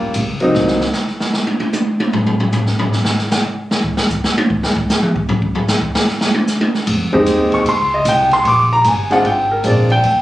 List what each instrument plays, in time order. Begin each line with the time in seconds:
Already playing: grand piano G3 A#3 C#4 F4
0.01 muted upright bass stroke
0.14 upright bass C#2, hi-hat pedal, ride
0.40 grand piano F#3 A#3 C4 D#4, ride
0.54 upright bass C2, snare
0.67 snare
0.81 snare
0.93 snare, hi-hat pedal
1.07 snare
1.20 snare
1.33 snare
1.47 high tom
1.60 high tom
1.73 hi-hat pedal, high tom
1.87 high tom
2.00 high tom
2.13 floor tom
2.27 floor tom
2.40 floor tom
2.52 floor tom, hi-hat pedal
2.66 snare
2.79 floor tom
2.92 snare
3.05 snare
3.18 snare
3.31 snare, hi-hat pedal
3.71 snare
3.84 kick
3.97 snare
4.10 kick, hi-hat pedal
4.24 snare
4.38 high tom
4.50 kick
4.63 snare
4.76 kick
4.89 snare, hi-hat pedal
5.03 mid tom
5.16 kick
5.29 floor tom
5.42 kick
5.55 floor tom
5.68 snare, hi-hat pedal
5.82 kick
5.95 snare
6.08 snare
6.21 snare
6.34 high tom
6.47 snare, hi-hat pedal
6.61 high tom
6.74 snare
6.87 upright bass F2, ride
7.13 grand piano G#3 C4 D#4 G4, kick
7.26 upright bass D#2, hi-hat pedal, ride
7.52 grand piano C#6, kick, ride
7.65 upright bass C#2, grand piano C6, ride
7.94 grand piano D#5
8.05 upright bass C2, grand piano G5, hi-hat pedal, ride
8.31 grand piano C6, snare, ride
8.43 upright bass A#1, grand piano C#6, ride
8.48 grand piano D6
8.73 grand piano A#5
8.84 upright bass G1, grand piano G#5, hi-hat pedal, ride
9.10 grand piano G#3 C4 D4 F4 F#5, snare, ride
9.24 upright bass G#1, grand piano G5, ride
9.52 grand piano A#4
9.64 upright bass A#1, grand piano G#3 C4 D4 F4 D5, hi-hat pedal, ride
9.90 grand piano G5, ride
10.03 upright bass D#2, ride